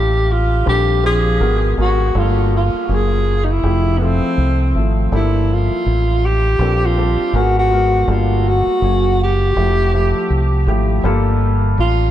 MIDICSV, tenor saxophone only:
0, 0, Header, 1, 2, 480
1, 0, Start_track
1, 0, Tempo, 740741
1, 1393, Time_signature, 4, 2, 24, 8
1, 7847, End_track
2, 0, Start_track
2, 0, Title_t, "Tenor saxophone"
2, 0, Program_c, 0, 66
2, 0, Note_on_c, 0, 67, 95
2, 208, Note_on_c, 0, 65, 85
2, 218, Note_off_c, 0, 67, 0
2, 440, Note_off_c, 0, 65, 0
2, 445, Note_on_c, 0, 67, 102
2, 662, Note_off_c, 0, 67, 0
2, 687, Note_on_c, 0, 68, 107
2, 1134, Note_off_c, 0, 68, 0
2, 1175, Note_on_c, 0, 66, 94
2, 1411, Note_on_c, 0, 65, 86
2, 1420, Note_off_c, 0, 66, 0
2, 1642, Note_off_c, 0, 65, 0
2, 1660, Note_on_c, 0, 65, 88
2, 1906, Note_on_c, 0, 68, 110
2, 1915, Note_off_c, 0, 65, 0
2, 2229, Note_on_c, 0, 63, 67
2, 2239, Note_off_c, 0, 68, 0
2, 2276, Note_on_c, 0, 64, 94
2, 2285, Note_off_c, 0, 63, 0
2, 2579, Note_on_c, 0, 59, 64
2, 2588, Note_off_c, 0, 64, 0
2, 2615, Note_on_c, 0, 60, 94
2, 2624, Note_off_c, 0, 59, 0
2, 3160, Note_off_c, 0, 60, 0
2, 3334, Note_on_c, 0, 64, 83
2, 3586, Note_on_c, 0, 65, 91
2, 3595, Note_off_c, 0, 64, 0
2, 4053, Note_on_c, 0, 67, 100
2, 4063, Note_off_c, 0, 65, 0
2, 4442, Note_on_c, 0, 65, 90
2, 4451, Note_off_c, 0, 67, 0
2, 4771, Note_on_c, 0, 66, 85
2, 4781, Note_off_c, 0, 65, 0
2, 4903, Note_off_c, 0, 66, 0
2, 4917, Note_on_c, 0, 66, 97
2, 5259, Note_on_c, 0, 65, 84
2, 5269, Note_off_c, 0, 66, 0
2, 5496, Note_on_c, 0, 66, 103
2, 5505, Note_off_c, 0, 65, 0
2, 5964, Note_off_c, 0, 66, 0
2, 5983, Note_on_c, 0, 67, 101
2, 6902, Note_off_c, 0, 67, 0
2, 7646, Note_on_c, 0, 65, 100
2, 7847, Note_off_c, 0, 65, 0
2, 7847, End_track
0, 0, End_of_file